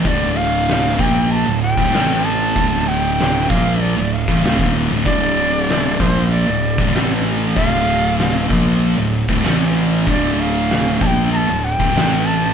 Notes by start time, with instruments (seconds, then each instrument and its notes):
0.04 picked electric bass D1, distorted electric guitar D2 A2 D3, shakuhachi D5 D#5, kick, open hi-hat
0.36 shakuhachi F5, open hi-hat
0.68 snare, open hi-hat
0.98 picked electric bass A#1, distorted electric guitar A#2 F3 A#3, shakuhachi G5, kick, open hi-hat
1.31 shakuhachi A#5, open hi-hat
1.35 shakuhachi A5
1.46 picked electric bass D1, distorted electric guitar D2 A2
1.62 shakuhachi G5, open hi-hat
1.77 picked electric bass D1, distorted electric guitar D2 A2, kick, snare
1.93 picked electric bass A1, distorted electric guitar A2 E3 A3, snare, open hi-hat
2.25 shakuhachi A5, open hi-hat
2.56 picked electric bass D1, distorted electric guitar D2 A2 D3, kick, open hi-hat
2.74 snare
2.88 shakuhachi G5, open hi-hat
3.19 snare, open hi-hat
3.49 picked electric bass A#1, distorted electric guitar A#2 F3 A#3, shakuhachi F5, kick, open hi-hat
3.82 shakuhachi D5, open hi-hat
3.96 picked electric bass D1, distorted electric guitar D2 A2
4.13 shakuhachi F5, open hi-hat
4.28 picked electric bass A1, distorted electric guitar A2 E3, kick, snare
4.43 picked electric bass D1, distorted electric guitar D2 A2, snare, open hi-hat
4.59 picked electric bass D#1, distorted electric guitar D#2 A#2 D#3, kick
4.75 open hi-hat
4.90 picked electric bass D1, distorted electric guitar D2 A2
5.04 picked electric bass D1, distorted electric guitar D2 A2 D3, shakuhachi D5, kick, open hi-hat
5.38 open hi-hat
5.69 snare, open hi-hat
6.00 picked electric bass A#1, distorted electric guitar A#2 F3 A#3, shakuhachi C5, kick, open hi-hat
6.31 shakuhachi D5, open hi-hat
6.47 picked electric bass D1, distorted electric guitar D2 A2
6.63 open hi-hat
6.78 picked electric bass D1, distorted electric guitar D2 A2, kick
6.94 picked electric bass A1, distorted electric guitar A2 E3 A3, snare, open hi-hat
7.25 open hi-hat
7.56 picked electric bass D1, distorted electric guitar D2 A2 D3, shakuhachi F5, kick, open hi-hat
7.88 open hi-hat
8.19 snare, open hi-hat
8.50 picked electric bass A#1, distorted electric guitar A#2 F3 A#3, kick, open hi-hat
8.81 open hi-hat
8.97 picked electric bass D1, distorted electric guitar D2 A2
9.13 open hi-hat
9.28 picked electric bass D1, distorted electric guitar D2 A2, kick
9.43 picked electric bass A1, distorted electric guitar A2 E3 A3, snare, open hi-hat
9.76 open hi-hat
10.06 picked electric bass D1, distorted electric guitar D2 A2 D3, shakuhachi D5, kick, open hi-hat
10.39 shakuhachi F5, open hi-hat
10.70 snare, open hi-hat
11.01 picked electric bass A#1, distorted electric guitar A#2 F3 A#3, shakuhachi A5, kick, open hi-hat
11.06 shakuhachi G5
11.32 shakuhachi A5 A#5, open hi-hat
11.48 picked electric bass D1, distorted electric guitar D2 A2
11.64 shakuhachi G5, open hi-hat
11.79 picked electric bass D1, distorted electric guitar D2 A2, kick
11.95 picked electric bass A1, distorted electric guitar A2 E3 A3, snare, open hi-hat
12.25 shakuhachi A5, open hi-hat